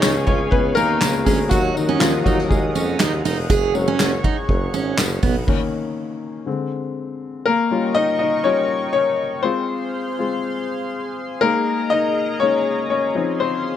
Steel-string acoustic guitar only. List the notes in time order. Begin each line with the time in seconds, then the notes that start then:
Already playing: D#4
0.27 F4
0.77 D#4
1.26 C#4
1.51 F#4
1.89 C#4
2.26 D#4
2.75 C#4
3.00 D#4
3.25 D#4
3.50 G#4
3.88 C#4
4.24 D#4
4.74 C#4
5.23 B3